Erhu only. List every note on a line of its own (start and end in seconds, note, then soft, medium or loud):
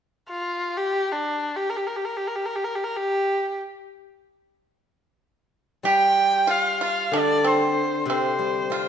0.29 0.79 F4 medium
0.78 1.14 G4 medium
1.12 1.58 D4 medium
1.57 1.72 G4 medium
1.70 1.78 A#4 medium
1.77 1.88 G4 medium
1.87 1.98 A#4 medium
1.97 2.07 G4 medium
2.05 2.18 A#4 medium
2.17 2.29 G4 medium
2.28 2.37 A#4 medium
2.36 2.47 G4 medium
2.46 2.57 A#4 medium
2.56 2.66 G4 medium
2.64 2.77 A#4 medium
2.75 2.85 G4 medium
2.84 2.98 A#4 medium
2.96 3.58 G4 medium
5.86 6.52 G5 medium
6.51 6.82 F5 medium
6.85 7.20 F5 medium
7.19 7.49 D5 medium
7.48 8.09 C5 medium
8.10 8.88 C5 medium